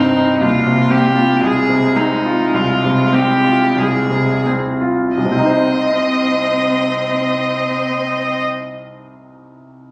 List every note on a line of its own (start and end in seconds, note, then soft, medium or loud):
0.00 0.41 C2 soft
0.00 0.43 G2 soft
0.00 0.41 C4 medium
0.00 0.43 C4 soft
0.00 0.17 D#4 soft
0.00 0.41 D#4 soft
0.17 0.41 D#4 soft
0.40 1.39 C2 soft
0.40 1.40 A#3 soft
0.40 0.93 F4 soft
0.66 1.06 C3 soft
0.90 1.31 C4 soft
0.90 1.42 G4 soft
1.14 1.57 F4 soft
1.40 2.52 C2 soft
1.40 4.42 G#3 soft
1.40 1.98 G#4 soft
1.68 2.13 C3 soft
1.96 2.42 C4 soft
1.96 2.56 D#4 soft
2.26 2.72 F4 soft
2.54 3.75 C2 soft
2.54 3.15 F4 soft
2.84 3.33 C3 soft
3.13 3.64 C4 soft
3.13 3.79 G4 soft
3.44 3.97 F4 soft
3.77 5.13 C2 soft
3.77 4.47 G#4 soft
4.10 4.68 C3 soft
4.46 5.03 C4 soft
4.81 5.17 F4 soft
5.17 8.40 C2 soft
5.17 8.39 C4 soft
5.17 8.40 D#5 soft
5.25 8.47 C3 soft
5.32 8.54 C4 soft
5.39 8.61 D#4 soft
5.46 8.69 C5 soft
5.52 8.75 D#5 soft